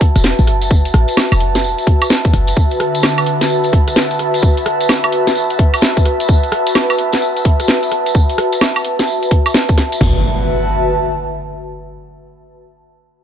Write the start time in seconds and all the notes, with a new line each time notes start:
Already playing: F#4 B4 E5 A5
0.01 kick, open hi-hat
0.16 E1, cross-stick, closed hi-hat, tambourine
0.24 snare, tambourine
0.39 A1, closed hi-hat, tambourine
0.47 F#1, cross-stick, open hi-hat
0.61 open hi-hat, tambourine
0.71 kick, tambourine
0.85 open hi-hat, tambourine
0.94 A1, cross-stick, open hi-hat
1.08 closed hi-hat, tambourine
1.17 snare, tambourine, high woodblock
1.32 E1, closed hi-hat, tambourine, high woodblock
1.40 F#1, open hi-hat
1.55 snare, closed hi-hat, tambourine
1.64 E1, tambourine
1.78 closed hi-hat, tambourine
1.87 kick, open hi-hat
2.01 closed hi-hat, tambourine, high woodblock
2.10 snare, tambourine
2.25 kick, closed hi-hat, tambourine
2.33 F#1, cross-stick, open hi-hat
2.47 closed hi-hat, tambourine
2.56 D3, kick, tambourine
2.71 closed hi-hat, tambourine
2.80 cross-stick, open hi-hat
2.95 closed hi-hat, tambourine
3.03 snare, tambourine, high woodblock
3.18 closed hi-hat, tambourine, high woodblock
3.26 open hi-hat
3.41 snare, closed hi-hat, tambourine
3.50 tambourine
3.64 closed hi-hat, tambourine
3.73 kick, open hi-hat
3.88 cross-stick, closed hi-hat, tambourine
3.96 snare, tambourine
4.11 closed hi-hat, tambourine
4.19 cross-stick, open hi-hat
4.34 open hi-hat, tambourine
4.42 kick, tambourine
4.57 open hi-hat, tambourine
4.66 cross-stick, open hi-hat
4.81 closed hi-hat, tambourine
4.89 snare, tambourine, high woodblock
5.04 closed hi-hat, tambourine, high woodblock
5.12 open hi-hat
5.27 snare, closed hi-hat, tambourine
5.35 tambourine
5.50 closed hi-hat, tambourine
5.59 kick, open hi-hat
5.74 closed hi-hat, tambourine, high woodblock
5.81 snare, tambourine
5.97 kick, closed hi-hat, tambourine
6.05 cross-stick, open hi-hat
6.20 closed hi-hat, tambourine
6.29 kick, tambourine
6.43 closed hi-hat, tambourine
6.52 cross-stick, open hi-hat
6.67 closed hi-hat, tambourine
6.75 snare, tambourine, high woodblock
6.90 closed hi-hat, tambourine, high woodblock
6.99 open hi-hat
7.12 snare, closed hi-hat, tambourine
7.22 tambourine
7.37 closed hi-hat, tambourine
7.45 kick, open hi-hat
7.60 cross-stick, closed hi-hat, tambourine
7.67 snare, tambourine
7.83 closed hi-hat, tambourine
7.92 cross-stick, open hi-hat
8.06 open hi-hat, tambourine
8.15 kick, tambourine
8.29 open hi-hat, tambourine
8.38 cross-stick, open hi-hat
8.52 closed hi-hat, tambourine
8.61 snare, tambourine, high woodblock
8.76 closed hi-hat, tambourine, high woodblock
8.85 open hi-hat
8.99 snare, closed hi-hat, tambourine
9.07 tambourine
9.23 closed hi-hat, tambourine
9.31 kick, open hi-hat
9.46 closed hi-hat, tambourine, high woodblock
9.54 snare, tambourine
9.68 kick, closed hi-hat, tambourine
9.78 cross-stick, snare, open hi-hat
9.92 closed hi-hat, tambourine
10.01 F#1 F#4, kick, crash, impact
10.10 B4
10.17 E5
10.22 A5